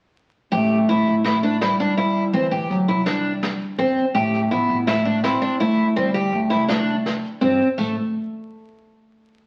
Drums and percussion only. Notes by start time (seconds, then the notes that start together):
0.53 kick, closed hi-hat
0.71 closed hi-hat
0.89 kick, closed hi-hat
1.07 kick, closed hi-hat
1.25 snare, closed hi-hat
1.44 closed hi-hat
1.61 snare, closed hi-hat
1.80 snare, closed hi-hat
1.98 closed hi-hat
2.16 closed hi-hat
2.34 kick, closed hi-hat
2.53 closed hi-hat
2.70 kick, closed hi-hat
2.88 kick, closed hi-hat
3.06 snare, closed hi-hat
3.25 closed hi-hat
3.43 snare, closed hi-hat
3.61 closed hi-hat
3.79 kick, closed hi-hat
3.97 closed hi-hat
4.15 kick, closed hi-hat
4.33 snare, closed hi-hat
4.51 kick, closed hi-hat
4.69 kick, closed hi-hat
4.87 snare, closed hi-hat
5.06 closed hi-hat
5.24 snare, closed hi-hat
5.42 closed hi-hat
5.60 closed hi-hat
5.78 closed hi-hat
5.96 kick, closed hi-hat
6.14 snare, closed hi-hat
6.33 kick, closed hi-hat
6.51 kick, snare, closed hi-hat
6.69 snare, closed hi-hat
6.88 closed hi-hat
7.06 snare, closed hi-hat
7.24 closed hi-hat
7.42 kick, closed hi-hat
7.61 closed hi-hat
7.78 kick, crash